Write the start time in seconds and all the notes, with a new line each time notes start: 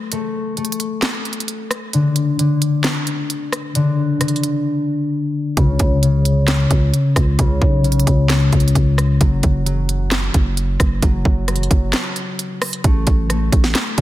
Already playing: A3
0.12 A3, closed hi-hat
0.57 A3, closed hi-hat
0.65 closed hi-hat
0.72 closed hi-hat
0.80 closed hi-hat
1.02 snare, clap, closed hi-hat
1.25 closed hi-hat
1.33 closed hi-hat
1.40 closed hi-hat
1.48 closed hi-hat
1.71 cross-stick, closed hi-hat
1.93 D3, closed hi-hat
2.16 closed hi-hat
2.39 D3, closed hi-hat
2.62 closed hi-hat
2.84 snare, clap, closed hi-hat
3.07 closed hi-hat
3.30 closed hi-hat
3.52 cross-stick, closed hi-hat
3.75 D3, closed hi-hat
4.20 D3, cross-stick, closed hi-hat
4.28 closed hi-hat
4.36 closed hi-hat
4.43 closed hi-hat
5.57 C#2 C#3, kick, closed hi-hat
5.79 C#2, kick, closed hi-hat
6.03 C#3, closed hi-hat
6.25 closed hi-hat
6.48 snare, clap, closed hi-hat
6.71 C#2, kick, closed hi-hat
6.94 closed hi-hat
7.16 C#2, kick, cross-stick, closed hi-hat
7.39 C#2 C#3, kick, closed hi-hat
7.62 B1, kick
7.84 C#3, closed hi-hat
7.92 closed hi-hat
8.00 closed hi-hat
8.07 C#2, kick, closed hi-hat
8.30 snare, clap, closed hi-hat
8.52 C#2, kick, closed hi-hat
8.60 closed hi-hat
8.68 closed hi-hat
8.75 C#2, kick, closed hi-hat
8.98 cross-stick, closed hi-hat
9.21 F#1 F#3, kick, closed hi-hat
9.43 F#1, kick, closed hi-hat
9.66 F#3, closed hi-hat
9.89 closed hi-hat
10.11 snare, clap, closed hi-hat
10.34 F#1, kick, closed hi-hat
10.57 closed hi-hat
10.80 F#1, kick, cross-stick, closed hi-hat
11.02 F#1 F#3, kick, closed hi-hat
11.25 F#1, kick
11.48 F#3, cross-stick, closed hi-hat
11.56 closed hi-hat
11.63 closed hi-hat
11.71 F#1, kick, closed hi-hat
11.93 snare, clap, closed hi-hat
12.16 closed hi-hat
12.39 closed hi-hat
12.62 cross-stick, closed hi-hat, open hi-hat
12.73 closed hi-hat
12.84 A1 A3, kick, closed hi-hat
13.07 A1, kick, closed hi-hat
13.30 A3, cross-stick, closed hi-hat
13.52 A1, kick, closed hi-hat
13.64 snare
13.75 snare, clap, closed hi-hat
13.98 A1, kick, closed hi-hat